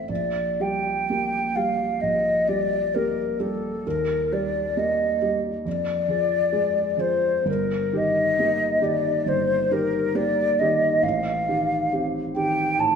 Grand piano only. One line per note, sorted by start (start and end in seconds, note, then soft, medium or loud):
0.00 0.12 A1 soft
0.00 0.12 A3 soft
0.00 0.12 C4 soft
0.00 0.12 C5 soft
0.09 1.96 A#1 soft
0.60 1.04 G3 soft
0.60 1.04 G4 soft
1.10 1.51 A#3 soft
1.10 1.51 G4 soft
1.56 1.97 G3 soft
1.56 1.98 G4 soft
2.03 3.82 A#1 soft
2.48 2.90 G3 soft
2.48 2.90 G4 soft
2.96 3.36 A#3 soft
2.96 3.36 G4 soft
3.40 3.81 G3 soft
3.40 3.82 G4 soft
3.87 5.63 D#2 soft
4.32 4.73 G3 soft
4.32 4.73 G4 soft
4.77 5.18 A#3 soft
4.77 5.18 G4 soft
5.22 5.62 G3 soft
5.22 5.62 G4 soft
5.66 7.43 F2 soft
6.08 6.49 F3 soft
6.08 6.49 G#4 soft
6.52 6.94 G#3 soft
6.52 6.95 G#4 soft
6.97 7.42 F3 soft
6.97 7.42 G#4 soft
7.46 9.22 G1 soft
7.93 8.35 D#3 soft
7.93 8.35 G4 soft
8.39 8.79 A#3 soft
8.39 8.79 G4 soft
8.81 9.22 D#3 soft
8.81 9.22 G4 soft
9.26 10.99 G1 soft
9.71 10.11 D#3 soft
9.71 10.12 G4 soft
10.15 10.55 A#3 soft
10.15 10.55 G4 soft
10.61 11.00 D#3 soft
10.61 11.00 G4 soft
11.03 12.74 A1 soft
11.49 11.88 D#3 soft
11.49 11.88 G4 soft
11.92 12.31 C4 soft
11.92 12.32 G4 soft
12.36 12.75 D#3 soft
12.36 12.75 G4 soft
12.79 12.96 A2 soft